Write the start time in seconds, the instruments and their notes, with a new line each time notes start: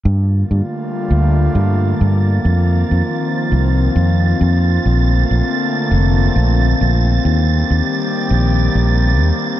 0.05 fretless electric bass G2, analog synth pad D3 G3 A3 A#3 F4, synth texture A6
0.51 fretless electric bass G2
1.10 fretless electric bass D2
1.55 fretless electric bass G2
2.01 fretless electric bass G2
2.45 fretless electric bass F2, analog synth pad D#3 F3 C4 F4
2.91 fretless electric bass F2
3.52 fretless electric bass C2
3.96 fretless electric bass F2
4.41 fretless electric bass F2
4.84 fretless electric bass A#1, analog synth pad D3 A3 A#3
5.31 fretless electric bass A#1
5.91 fretless electric bass F1
6.36 fretless electric bass A#1
6.81 fretless electric bass A#1
7.25 fretless electric bass D#2, analog synth pad D#3 G3 A#3 G4
7.71 fretless electric bass D#2
8.31 fretless electric bass A#1
8.75 fretless electric bass A#1
9.21 fretless electric bass D#2